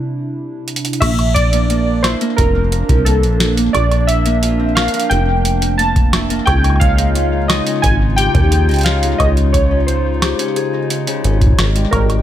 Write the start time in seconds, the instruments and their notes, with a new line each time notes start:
Already playing: analog synth pad C3 D4 E4, harp G3 C4
0.68 closed hi-hat
0.76 closed hi-hat
0.85 closed hi-hat
0.93 closed hi-hat
1.00 acid bass A#1, harp A#3, analog synth pad A#3 D4, synth keys E5, kick, closed hi-hat, crash, high woodblock
1.19 closed hi-hat, high woodblock
1.34 synth keys D5, kick, closed hi-hat
1.53 harp A#3, closed hi-hat
1.70 harp A#3, closed hi-hat
2.03 harp E4, synth keys C5, snare, closed hi-hat, high woodblock
2.21 harp A#3, closed hi-hat
2.36 acid bass F1, harp F4, synth keys A#4, kick, closed hi-hat
2.55 harp C4
2.72 harp A#4, closed hi-hat
2.89 acid bass C2, harp F3, kick, closed hi-hat, mid tom
3.05 harp A#3, synth keys A4, closed hi-hat
3.23 acid bass A#1, closed hi-hat
3.40 snare, closed hi-hat
3.57 harp A#3, closed hi-hat
3.73 acid bass A#1, harp A#3, synth keys D5, kick, closed hi-hat, high woodblock
3.92 closed hi-hat, high woodblock
4.07 harp E4, synth keys E5, closed hi-hat
4.25 harp A#3, closed hi-hat
4.43 harp F4, closed hi-hat
4.60 harp C4
4.75 harp A#4, synth keys F5, snare, closed hi-hat, high woodblock
4.88 closed hi-hat
4.94 harp F3, closed hi-hat
5.00 closed hi-hat
5.10 acid bass F1, harp A#3, synth keys G5, closed hi-hat
5.45 closed hi-hat
5.62 harp A#3, closed hi-hat
5.78 harp A#3, synth keys A5, closed hi-hat
5.96 kick, closed hi-hat
6.13 harp E4, snare, closed hi-hat, high woodblock
6.30 harp A#3, closed hi-hat
6.46 acid bass C#2, analog synth pad C#3 D#4 F4, harp G#4, synth keys G5, kick, closed hi-hat, high woodblock
6.64 harp D#4, closed hi-hat, high woodblock
6.70 high woodblock
6.76 synth keys F5, high woodblock
6.81 harp C#5, kick, closed hi-hat
6.98 harp G#3, closed hi-hat
7.15 harp C#4, closed hi-hat
7.48 synth keys D#5, snare, closed hi-hat, high woodblock
7.66 harp C#4, closed hi-hat
7.82 acid bass G#1, harp C#4, synth keys G#5, kick, closed hi-hat
8.16 harp G4, synth keys G5, closed hi-hat
8.35 acid bass D#2, harp C#4, kick, closed hi-hat, mid tom
8.52 harp G#4, closed hi-hat
8.69 acid bass C#2, harp D#4, closed hi-hat
8.71 closed hi-hat
8.74 closed hi-hat
8.76 closed hi-hat
8.79 closed hi-hat
8.81 closed hi-hat
8.83 harp C#5, synth keys F5, snare, closed hi-hat
9.03 harp G#3, closed hi-hat
9.18 acid bass C#2, harp C#4, synth keys D#5, kick, closed hi-hat, high woodblock
9.37 closed hi-hat
9.53 synth keys C#5, kick, closed hi-hat, high woodblock
9.71 harp C#4
9.87 harp C#4, synth keys C5, closed hi-hat
10.22 harp G4, snare, closed hi-hat, high woodblock
10.39 harp C#4, closed hi-hat
10.56 harp G#4, closed hi-hat
10.73 harp D#4
10.90 harp C#4, closed hi-hat
11.07 harp C#3, closed hi-hat
11.24 acid bass G#1, harp C#4, closed hi-hat
11.41 kick, closed hi-hat
11.47 kick
11.53 kick
11.58 acid bass G#1, harp D#3, analog synth pad G#3 G5, snare, closed hi-hat, high woodblock
11.75 harp G3, closed hi-hat
11.91 acid bass G#1, harp G#3, synth keys A#4, kick, closed hi-hat, high woodblock
12.10 closed hi-hat, high woodblock